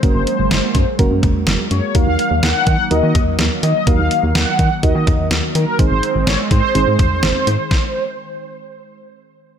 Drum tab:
HH |xxxxxxxx|xxxxxxxx|xxxxxxxx|xxxxxxxx|
SD |--o---o-|--o---o-|--o---o-|--o---o-|
T2 |-----o--|-----o--|-----o--|-----o--|
BD |o--ooo--|o--o-o--|o--ooo--|o--o-o--|

HH |--------|
SD |o-------|
T2 |--------|
BD |o-------|